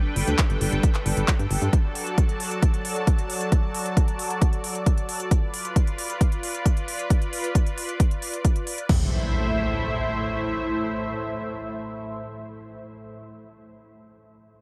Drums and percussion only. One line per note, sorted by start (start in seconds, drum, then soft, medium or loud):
0.16 open hi-hat loud
0.27 closed hi-hat soft
0.39 kick loud
0.39 clap loud
0.39 closed hi-hat medium
0.50 closed hi-hat soft
0.61 open hi-hat loud
0.72 closed hi-hat soft
0.83 kick loud
0.83 closed hi-hat medium
0.95 clap soft
0.95 closed hi-hat soft
1.06 open hi-hat loud
1.17 closed hi-hat medium
1.28 kick loud
1.28 clap loud
1.28 closed hi-hat medium
1.39 closed hi-hat soft
1.51 open hi-hat loud
1.62 closed hi-hat medium
1.73 kick loud
1.73 closed hi-hat medium
1.95 open hi-hat loud
2.07 closed hi-hat soft
2.18 kick loud
2.18 closed hi-hat medium
2.29 closed hi-hat soft
2.40 open hi-hat loud
2.51 closed hi-hat soft
2.62 kick loud
2.62 closed hi-hat medium
2.74 closed hi-hat soft
2.85 open hi-hat loud
2.96 closed hi-hat soft
3.07 kick loud
3.07 closed hi-hat medium
3.18 closed hi-hat soft
3.30 open hi-hat loud
3.41 closed hi-hat soft
3.52 kick loud
3.52 closed hi-hat medium
3.75 open hi-hat loud
3.86 closed hi-hat soft
3.97 kick loud
3.97 closed hi-hat medium
4.08 closed hi-hat soft
4.19 open hi-hat loud
4.30 closed hi-hat medium
4.42 kick loud
4.42 closed hi-hat medium
4.53 closed hi-hat soft
4.64 open hi-hat loud
4.75 closed hi-hat soft
4.86 kick loud
4.86 closed hi-hat medium
4.98 closed hi-hat soft
5.09 open hi-hat loud
5.20 closed hi-hat soft
5.31 kick loud
5.31 closed hi-hat medium
5.54 open hi-hat loud
5.65 closed hi-hat medium
5.76 kick loud
5.76 closed hi-hat medium
5.87 closed hi-hat soft
5.98 open hi-hat loud
6.10 closed hi-hat medium
6.21 kick loud
6.21 closed hi-hat medium
6.32 closed hi-hat soft
6.43 open hi-hat loud
6.54 closed hi-hat medium
6.66 kick loud
6.66 closed hi-hat medium
6.77 closed hi-hat soft
6.88 open hi-hat loud
6.99 closed hi-hat medium
7.10 kick loud
7.10 closed hi-hat medium
7.22 closed hi-hat soft
7.33 open hi-hat loud
7.44 closed hi-hat medium
7.55 kick loud
7.55 closed hi-hat medium
7.66 closed hi-hat soft
7.78 open hi-hat loud
7.89 closed hi-hat medium
8.00 kick loud
8.00 closed hi-hat medium
8.11 closed hi-hat soft
8.22 open hi-hat loud
8.33 closed hi-hat medium
8.45 kick loud
8.45 closed hi-hat medium
8.56 closed hi-hat soft
8.67 open hi-hat loud
8.78 closed hi-hat medium
8.89 kick loud
8.89 crash medium